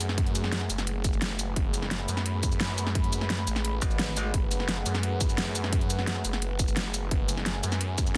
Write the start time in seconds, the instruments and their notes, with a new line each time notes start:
Already playing: detuned saw bass F#2, analog synth pad A3 G#4 B4 F#5
0.01 closed hi-hat, shaker
0.09 snare
0.18 kick, closed hi-hat
0.26 closed hi-hat
0.35 closed hi-hat, shaker
0.44 snare
0.52 snare, closed hi-hat
0.61 snare
0.70 detuned saw bass F#1, closed hi-hat, shaker
0.78 snare, shaker
0.87 closed hi-hat
1.04 kick, closed hi-hat, shaker
1.13 shaker
1.22 snare, closed hi-hat
1.39 closed hi-hat, shaker
1.56 detuned saw bass F#1, analog synth pad B5, kick, closed hi-hat
1.74 closed hi-hat, shaker
1.82 snare
1.91 snare, closed hi-hat
2.00 snare
2.08 detuned saw bass F#2, closed hi-hat, shaker
2.17 snare, shaker
2.26 closed hi-hat
2.43 kick, closed hi-hat, shaker
2.52 shaker
2.61 snare, closed hi-hat
2.78 closed hi-hat, shaker
2.87 snare
2.95 kick, closed hi-hat
3.04 closed hi-hat
3.13 closed hi-hat, shaker
3.21 snare
3.30 snare, closed hi-hat
3.39 snare
3.47 detuned saw bass A1, closed hi-hat, shaker
3.56 snare, shaker
3.65 closed hi-hat
3.82 wobble bass G#1, kick, closed hi-hat, shaker
3.91 shaker
3.99 snare, closed hi-hat
4.17 closed hi-hat, shaker
4.34 detuned saw bass F#1, analog synth pad F#5, kick, closed hi-hat
4.51 closed hi-hat, shaker
4.60 snare
4.69 snare, closed hi-hat
4.77 snare
4.86 detuned saw bass F#2, closed hi-hat, shaker
4.95 snare, shaker
5.03 closed hi-hat
5.21 kick, closed hi-hat, shaker
5.29 shaker
5.38 snare, closed hi-hat
5.55 closed hi-hat, shaker
5.64 snare
5.73 kick, closed hi-hat
5.81 closed hi-hat
5.90 closed hi-hat, shaker
5.99 snare
6.07 snare, closed hi-hat
6.16 snare
6.25 detuned saw bass F#1, closed hi-hat, shaker
6.33 snare, shaker
6.42 closed hi-hat
6.59 kick, closed hi-hat, shaker
6.68 shaker
6.77 snare, closed hi-hat
6.94 closed hi-hat, shaker
7.11 detuned saw bass F#1, analog synth pad G#5, kick, closed hi-hat
7.29 closed hi-hat, shaker
7.37 snare
7.46 snare, closed hi-hat
7.55 snare
7.63 detuned saw bass F#2, closed hi-hat, shaker
7.72 snare, shaker
7.81 closed hi-hat
7.98 kick, closed hi-hat, shaker
8.07 shaker